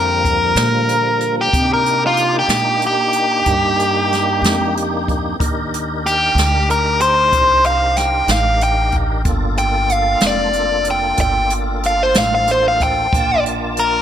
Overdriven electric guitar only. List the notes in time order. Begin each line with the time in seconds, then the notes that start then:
Already playing: A#4
1.41 G4
1.74 A#4
2.07 F4
2.39 G4
2.87 G4
6.06 G4
6.71 A#4
7.02 C5
7.66 F5
7.98 G5
8.31 F5
8.63 G5
9.58 G5
9.93 F5
10.27 D5
10.91 G5
11.21 G5
11.86 F5
12.03 C5
12.18 F5
12.35 F5
12.51 C5
12.68 F5
12.83 G5
13.79 A#4